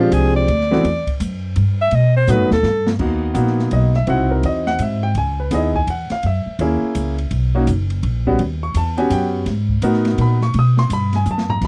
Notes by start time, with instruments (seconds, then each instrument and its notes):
Already playing: upright bass A#1
0.00 grand piano F3 G#3 C4 D4 G4, alto saxophone F4
0.12 upright bass C2, alto saxophone G#4, kick, hi-hat pedal, ride
0.36 alto saxophone D5
0.48 upright bass D2, kick, ride
0.61 snare
0.71 grand piano E3 A3 B3 C4 F#4, snare
0.84 upright bass E2, kick, ride
1.07 muted upright bass stroke, kick, ride
1.20 upright bass F#2, hi-hat pedal, ride
1.56 upright bass G2, kick, ride
1.82 alto saxophone E5
1.91 upright bass B2, kick, ride
1.95 alto saxophone D#5
2.17 alto saxophone C5
2.27 upright bass A2, grand piano F#3 A3 B3 D#4 F#4, alto saxophone B4, snare, hi-hat pedal
2.40 upright bass F#2
2.51 upright bass D#2, alto saxophone A4, snare
2.63 upright bass G2, snare
2.87 snare
2.99 upright bass D#2, grand piano A#3 B3 D#4 F#4, kick, crash
3.34 upright bass A#1, grand piano A#3 B3 D#4 F#4, kick, hi-hat pedal, ride
3.47 snare
3.59 snare
3.71 upright bass B1, grand piano D#5, kick, ride
3.94 grand piano E5, snare
4.07 upright bass C2, grand piano C4 D#4 E4 F#4 F#5, kick, ride
4.31 grand piano A#4
4.43 upright bass E2, grand piano D#5, kick, ride
4.67 grand piano F#5, snare
4.79 upright bass G#2, grand piano E5, kick, hi-hat pedal, ride
5.03 grand piano G5
5.15 upright bass C#2, grand piano G#5, kick, ride
5.40 grand piano B4
5.51 upright bass D#2, grand piano B3 D#4 E4 G#4 D#5, kick, snare, hi-hat pedal, ride
5.74 grand piano G#5, kick
5.87 upright bass E2, grand piano F#5, kick, ride
6.10 grand piano F5, muted upright bass stroke, snare, ride
6.23 upright bass F#2, grand piano E5, kick, ride
6.46 muted upright bass stroke
6.59 upright bass D#2, grand piano A#3 C#4 E4 G#4, kick, ride
6.82 muted upright bass stroke
6.95 upright bass C#2, kick, hi-hat pedal, ride
7.18 ride
7.31 upright bass B1, kick, ride
7.55 grand piano A#3 C#4 D#4 F#4
7.67 upright bass F#1, kick, hi-hat pedal, ride
7.90 ride
8.03 upright bass A#1, kick, ride
8.26 grand piano G3 B3 C#4 F#4, kick
8.39 upright bass D#2, ride
8.63 grand piano C#6
8.74 upright bass E2, grand piano A5, kick, hi-hat pedal, ride
8.97 grand piano B3 C#4 F#4 G4 G#5, ride
9.10 upright bass F#2, grand piano G5, kick, hi-hat pedal, ride
9.46 upright bass G#2, kick, snare, ride
9.69 kick
9.82 upright bass A2, grand piano B3 D#4 F#4 A#4, hi-hat pedal, ride
9.94 snare
10.05 snare, ride
10.18 upright bass A#2, grand piano B5, kick, ride
10.41 grand piano C#6, snare
10.54 upright bass B2, kick, ride
10.59 grand piano D#6
10.77 grand piano C6, snare
10.90 upright bass G2, grand piano B5, kick, hi-hat pedal, ride
11.13 grand piano G#5, snare, ride
11.26 upright bass F#2, hi-hat pedal
11.31 grand piano A5
11.38 snare
11.49 grand piano A#5, floor tom
11.61 upright bass E2, kick, snare, crash